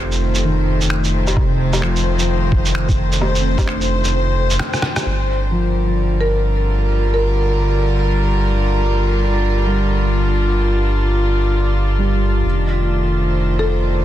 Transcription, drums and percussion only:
0, 0, Header, 1, 2, 480
1, 0, Start_track
1, 0, Key_signature, -2, "minor"
1, 0, Tempo, 461538
1, 1420, Time_signature, 4, 2, 24, 8
1, 14610, End_track
2, 0, Start_track
2, 0, Title_t, "Drums"
2, 123, Note_on_c, 9, 82, 30
2, 227, Note_off_c, 9, 82, 0
2, 363, Note_on_c, 9, 82, 50
2, 467, Note_off_c, 9, 82, 0
2, 846, Note_on_c, 9, 82, 53
2, 937, Note_on_c, 9, 26, 99
2, 950, Note_off_c, 9, 82, 0
2, 1041, Note_off_c, 9, 26, 0
2, 1084, Note_on_c, 9, 82, 42
2, 1188, Note_off_c, 9, 82, 0
2, 1324, Note_on_c, 9, 77, 35
2, 1324, Note_on_c, 9, 82, 50
2, 1419, Note_on_c, 9, 36, 107
2, 1420, Note_off_c, 9, 77, 0
2, 1420, Note_on_c, 9, 77, 35
2, 1428, Note_off_c, 9, 82, 0
2, 1523, Note_off_c, 9, 36, 0
2, 1524, Note_off_c, 9, 77, 0
2, 1802, Note_on_c, 9, 77, 54
2, 1802, Note_on_c, 9, 82, 54
2, 1895, Note_on_c, 9, 26, 96
2, 1906, Note_off_c, 9, 77, 0
2, 1906, Note_off_c, 9, 82, 0
2, 1999, Note_off_c, 9, 26, 0
2, 2039, Note_on_c, 9, 82, 30
2, 2143, Note_off_c, 9, 82, 0
2, 2280, Note_on_c, 9, 82, 52
2, 2384, Note_off_c, 9, 82, 0
2, 2620, Note_on_c, 9, 36, 94
2, 2724, Note_off_c, 9, 36, 0
2, 2762, Note_on_c, 9, 82, 55
2, 2859, Note_on_c, 9, 26, 100
2, 2866, Note_off_c, 9, 82, 0
2, 2963, Note_off_c, 9, 26, 0
2, 3005, Note_on_c, 9, 36, 101
2, 3005, Note_on_c, 9, 82, 43
2, 3109, Note_off_c, 9, 36, 0
2, 3109, Note_off_c, 9, 82, 0
2, 3248, Note_on_c, 9, 82, 51
2, 3343, Note_on_c, 9, 77, 37
2, 3352, Note_off_c, 9, 82, 0
2, 3447, Note_off_c, 9, 77, 0
2, 3487, Note_on_c, 9, 82, 32
2, 3591, Note_off_c, 9, 82, 0
2, 3724, Note_on_c, 9, 36, 98
2, 3729, Note_on_c, 9, 77, 55
2, 3729, Note_on_c, 9, 82, 56
2, 3822, Note_on_c, 9, 26, 97
2, 3828, Note_off_c, 9, 36, 0
2, 3833, Note_off_c, 9, 77, 0
2, 3833, Note_off_c, 9, 82, 0
2, 3926, Note_off_c, 9, 26, 0
2, 3965, Note_on_c, 9, 82, 32
2, 4069, Note_off_c, 9, 82, 0
2, 4206, Note_on_c, 9, 82, 54
2, 4310, Note_off_c, 9, 82, 0
2, 4684, Note_on_c, 9, 82, 58
2, 4778, Note_on_c, 9, 26, 103
2, 4778, Note_on_c, 9, 37, 61
2, 4788, Note_off_c, 9, 82, 0
2, 4882, Note_off_c, 9, 26, 0
2, 4882, Note_off_c, 9, 37, 0
2, 4925, Note_on_c, 9, 37, 58
2, 4925, Note_on_c, 9, 82, 43
2, 5016, Note_off_c, 9, 37, 0
2, 5016, Note_on_c, 9, 37, 82
2, 5029, Note_off_c, 9, 82, 0
2, 5120, Note_off_c, 9, 37, 0
2, 5161, Note_on_c, 9, 37, 81
2, 5161, Note_on_c, 9, 77, 37
2, 5161, Note_on_c, 9, 82, 55
2, 5265, Note_off_c, 9, 37, 0
2, 5265, Note_off_c, 9, 77, 0
2, 5265, Note_off_c, 9, 82, 0
2, 14610, End_track
0, 0, End_of_file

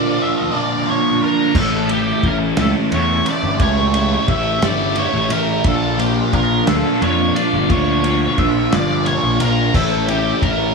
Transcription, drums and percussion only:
0, 0, Header, 1, 2, 480
1, 0, Start_track
1, 0, Tempo, 682594
1, 1089, Time_signature, 6, 3, 24, 8
1, 7556, End_track
2, 0, Start_track
2, 0, Title_t, "Drums"
2, 1089, Note_on_c, 9, 36, 119
2, 1090, Note_on_c, 9, 49, 118
2, 1160, Note_off_c, 9, 36, 0
2, 1160, Note_off_c, 9, 49, 0
2, 1331, Note_on_c, 9, 51, 76
2, 1402, Note_off_c, 9, 51, 0
2, 1570, Note_on_c, 9, 36, 74
2, 1571, Note_on_c, 9, 51, 69
2, 1640, Note_off_c, 9, 36, 0
2, 1642, Note_off_c, 9, 51, 0
2, 1806, Note_on_c, 9, 51, 104
2, 1808, Note_on_c, 9, 38, 115
2, 1876, Note_off_c, 9, 51, 0
2, 1879, Note_off_c, 9, 38, 0
2, 2052, Note_on_c, 9, 51, 82
2, 2123, Note_off_c, 9, 51, 0
2, 2292, Note_on_c, 9, 51, 82
2, 2362, Note_off_c, 9, 51, 0
2, 2528, Note_on_c, 9, 51, 106
2, 2530, Note_on_c, 9, 36, 106
2, 2599, Note_off_c, 9, 51, 0
2, 2601, Note_off_c, 9, 36, 0
2, 2770, Note_on_c, 9, 51, 86
2, 2840, Note_off_c, 9, 51, 0
2, 3010, Note_on_c, 9, 51, 76
2, 3011, Note_on_c, 9, 36, 73
2, 3081, Note_off_c, 9, 51, 0
2, 3082, Note_off_c, 9, 36, 0
2, 3251, Note_on_c, 9, 51, 96
2, 3253, Note_on_c, 9, 38, 113
2, 3321, Note_off_c, 9, 51, 0
2, 3324, Note_off_c, 9, 38, 0
2, 3485, Note_on_c, 9, 51, 92
2, 3555, Note_off_c, 9, 51, 0
2, 3729, Note_on_c, 9, 51, 91
2, 3799, Note_off_c, 9, 51, 0
2, 3968, Note_on_c, 9, 51, 101
2, 3971, Note_on_c, 9, 36, 122
2, 4038, Note_off_c, 9, 51, 0
2, 4041, Note_off_c, 9, 36, 0
2, 4215, Note_on_c, 9, 51, 72
2, 4286, Note_off_c, 9, 51, 0
2, 4453, Note_on_c, 9, 36, 73
2, 4453, Note_on_c, 9, 51, 77
2, 4523, Note_off_c, 9, 36, 0
2, 4523, Note_off_c, 9, 51, 0
2, 4692, Note_on_c, 9, 51, 102
2, 4694, Note_on_c, 9, 38, 117
2, 4762, Note_off_c, 9, 51, 0
2, 4764, Note_off_c, 9, 38, 0
2, 4937, Note_on_c, 9, 51, 71
2, 5007, Note_off_c, 9, 51, 0
2, 5177, Note_on_c, 9, 51, 81
2, 5248, Note_off_c, 9, 51, 0
2, 5413, Note_on_c, 9, 36, 103
2, 5413, Note_on_c, 9, 51, 88
2, 5484, Note_off_c, 9, 36, 0
2, 5484, Note_off_c, 9, 51, 0
2, 5654, Note_on_c, 9, 51, 72
2, 5724, Note_off_c, 9, 51, 0
2, 5892, Note_on_c, 9, 51, 73
2, 5893, Note_on_c, 9, 36, 77
2, 5963, Note_off_c, 9, 51, 0
2, 5964, Note_off_c, 9, 36, 0
2, 6135, Note_on_c, 9, 51, 94
2, 6137, Note_on_c, 9, 38, 114
2, 6205, Note_off_c, 9, 51, 0
2, 6207, Note_off_c, 9, 38, 0
2, 6372, Note_on_c, 9, 51, 80
2, 6442, Note_off_c, 9, 51, 0
2, 6611, Note_on_c, 9, 51, 92
2, 6681, Note_off_c, 9, 51, 0
2, 6851, Note_on_c, 9, 36, 111
2, 6851, Note_on_c, 9, 57, 108
2, 6922, Note_off_c, 9, 36, 0
2, 6922, Note_off_c, 9, 57, 0
2, 7092, Note_on_c, 9, 51, 76
2, 7162, Note_off_c, 9, 51, 0
2, 7329, Note_on_c, 9, 36, 77
2, 7331, Note_on_c, 9, 51, 79
2, 7400, Note_off_c, 9, 36, 0
2, 7401, Note_off_c, 9, 51, 0
2, 7556, End_track
0, 0, End_of_file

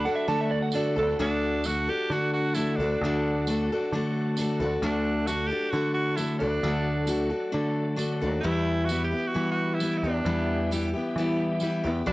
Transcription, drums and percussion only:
0, 0, Header, 1, 2, 480
1, 0, Start_track
1, 0, Key_signature, 2, "major"
1, 0, Tempo, 453172
1, 1258, Time_signature, 4, 2, 24, 8
1, 12846, End_track
2, 0, Start_track
2, 0, Title_t, "Drums"
2, 761, Note_on_c, 9, 54, 95
2, 867, Note_off_c, 9, 54, 0
2, 1735, Note_on_c, 9, 54, 94
2, 1841, Note_off_c, 9, 54, 0
2, 2696, Note_on_c, 9, 54, 105
2, 2802, Note_off_c, 9, 54, 0
2, 3677, Note_on_c, 9, 54, 99
2, 3783, Note_off_c, 9, 54, 0
2, 4626, Note_on_c, 9, 54, 105
2, 4732, Note_off_c, 9, 54, 0
2, 5586, Note_on_c, 9, 54, 111
2, 5692, Note_off_c, 9, 54, 0
2, 6541, Note_on_c, 9, 54, 110
2, 6647, Note_off_c, 9, 54, 0
2, 7488, Note_on_c, 9, 54, 105
2, 7594, Note_off_c, 9, 54, 0
2, 8459, Note_on_c, 9, 54, 108
2, 8565, Note_off_c, 9, 54, 0
2, 9417, Note_on_c, 9, 54, 111
2, 9523, Note_off_c, 9, 54, 0
2, 10383, Note_on_c, 9, 54, 109
2, 10489, Note_off_c, 9, 54, 0
2, 11355, Note_on_c, 9, 54, 103
2, 11461, Note_off_c, 9, 54, 0
2, 12285, Note_on_c, 9, 54, 93
2, 12391, Note_off_c, 9, 54, 0
2, 12846, End_track
0, 0, End_of_file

